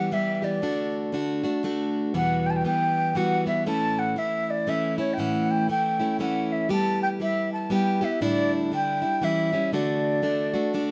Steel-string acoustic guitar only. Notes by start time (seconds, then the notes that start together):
Already playing: E3 G3 B3 G4
0.12 E3 G3 B3 G4
0.42 E3 G3 B3 G4
0.62 D3 A3 D4 F#4
1.12 D3 A3 D4 F#4
1.44 A3 D4 F#4
1.63 D3 A3 D4 F#4
2.14 E2 B2 E3 G3 B3 F#4
2.65 E3 G3 B3
3.15 E3 G3 B3 F#4
3.46 E3 G3 B3 F#4
3.66 A2 E3 A3 C#4 E4
4.16 E3 A3 C#4 E4
4.67 E3 A3 C#4 E4
4.98 A3 C#4 E4
5.18 A2 E3 A3 C#4 E4
5.68 E3 A3 C#4 E4
5.99 A3 C#4 E4
6.19 E3 A3 C#4 E4
6.69 G3 B3 E4 G4
7.20 G3 B3 E4 G4
7.70 G3 B3 E4 G4
8.01 B3 E4 G4
8.21 A2 D3 G3 D4 E4
8.72 D3 G3 D4 E4
9.02 G3 D4 E4
9.22 E3 G3 C#4 E4
9.52 G3 C#4 E4
9.73 D3 A3 D4 F#4
10.22 D3 A3 D4 F#4
10.54 A3 D4 F#4
10.74 D3 A3 D4 F#4